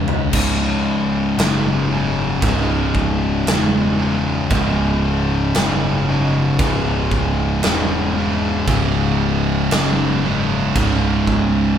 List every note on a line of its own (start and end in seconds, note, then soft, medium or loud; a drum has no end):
0.00 0.33 E1 medium
0.00 0.30 C#2 medium
0.00 0.31 G#2 medium
0.00 0.32 C#3 medium
0.00 0.32 C#3 loud
0.08 floor tom medium
0.33 1.34 C#1 loud
0.33 1.38 C#2 loud
0.33 1.38 G#2 loud
0.33 1.39 C#3 loud
0.33 kick loud
0.33 crash loud
0.33 crash medium
1.38 2.39 F#1 loud
1.38 1.91 C#2 medium
1.38 1.90 G#2 loud
1.38 1.91 C#3 medium
1.38 snare loud
1.38 crash medium
1.91 2.42 C#2 medium
1.91 2.42 G#2 medium
1.91 2.43 C#3 loud
2.42 3.43 C#1 loud
2.42 3.48 C#2 loud
2.42 3.47 G#2 medium
2.42 3.48 C#3 loud
2.42 kick loud
2.42 crash medium
2.95 kick medium
3.46 4.47 E1 loud
3.46 3.99 C#2 medium
3.46 3.99 G#2 medium
3.46 4.00 C#3 medium
3.46 snare loud
3.46 crash medium
3.99 4.51 C#2 medium
3.99 4.51 G#2 loud
3.99 4.52 C#3 loud
4.50 5.52 C#1 loud
4.50 5.57 C#2 loud
4.50 5.56 G#2 medium
4.50 5.58 C#3 loud
4.50 kick loud
4.50 crash medium
5.55 6.56 F#1 medium
5.55 6.08 C#2 loud
5.55 6.08 G#2 medium
5.55 6.10 C#3 loud
5.55 snare loud
5.55 crash medium
6.09 6.60 C#2 medium
6.09 6.60 G#2 medium
6.09 6.60 C#3 loud
6.59 7.60 C#1 loud
6.59 7.65 C#2 loud
6.59 7.64 G#2 medium
6.59 7.65 C#3 medium
6.59 kick loud
6.59 crash medium
7.11 kick medium
7.63 8.64 E1 loud
7.63 8.17 C#2 medium
7.63 8.16 G#2 medium
7.63 8.17 C#3 medium
7.63 snare loud
7.63 crash medium
8.17 8.69 C#2 loud
8.17 8.69 G#2 medium
8.17 8.70 C#3 loud
8.67 9.68 C#1 loud
8.67 9.72 C#2 medium
8.67 9.71 G#2 loud
8.67 9.73 C#3 loud
8.67 kick loud
8.67 crash medium
9.71 10.72 F#1 loud
9.71 10.24 C#2 medium
9.71 10.23 G#2 loud
9.71 10.24 C#3 loud
9.71 snare loud
9.71 crash medium
10.24 10.76 C#2 medium
10.24 10.76 G#2 medium
10.24 10.77 C#3 loud
10.76 11.76 C#1 loud
10.76 11.78 C#2 medium
10.76 11.78 G#2 medium
10.76 11.78 C#3 medium
10.76 kick loud
10.76 crash medium
11.27 kick medium